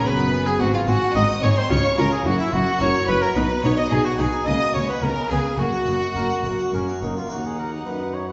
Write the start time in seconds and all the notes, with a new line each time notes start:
0.05 F#1 F#2 B3 D#4 B4 B5
0.19 B3
0.33 G#4
0.46 B3 G#4 G#5
0.60 G#1 G#2 C4 F#4 F#5
0.74 C4 F4 F5
0.87 G#1 G#2 C4 F#4 G#4 F#5
1.02 C4
1.15 G#1 G#2 C4 D#4 D#5 D#6
1.29 C4
1.43 G#1 G#2 C4 G#4 C#5 C#6
1.56 C4 C5 C6
1.70 C#2 C#3 F4 C#5 C#6
1.84 F4
1.98 C#2 C#3 F4 A#4 C#5 A#5
2.11 F4 G#4 G#5
2.24 F#1 F#2 E4 F#4 F#5
2.39 E4 F#4 E5
2.52 F#1 F#2 E4 F#4 E5 F#5
2.67 F#4
2.80 F#1 F#2 E4 A#4 C#5 C#6
2.94 F#4
3.08 F#1 F#2 E4 B4 E5 B5
3.21 F#4 A#4 A#5
3.35 B1 B2 D#4 B4 B5
3.49 D#4
3.63 B1 B2 D#4 B4 C#5 C#6
3.77 D#4 D#5 D#6
3.91 B1 B2 D#4 G#4 G#5
4.04 D#4 F#4 F#5
4.18 B1 B2 D#4 G#4 B4 G#5
4.33 D#4
4.46 C#2 C#3 A#3 D#5 D#6
4.60 F#4
4.74 C#2 C#3 A#3 C#5 C#6
4.87 F#4 B4 B5
5.02 C#2 C#3 B3 A#4 A#5
5.16 C#4
5.30 C#2 C#3 B3 G#4 B4 G#5
5.44 C#4
5.58 F#1 F#2 A#3 F#4 F#5
5.72 F#4
5.87 F#1 F#2 A#3 C#5
6.02 F#4
6.16 F#1 F#2 A#3 A#4
6.30 F#4
6.44 F#1 F#2 A#3 C#5
6.59 F#4
6.73 F#1 F#2 A#3 C#4 A#4
6.88 F#4
7.02 F#1 F#2 A#3 D#4 C#5
7.17 F4 F#4
7.27 A#3 D#4 F#4 F#5 A#5
7.31 D#2 F#4
7.45 G#4
7.59 A#4
7.86 F#2 B4
8.14 C#5
8.28 B4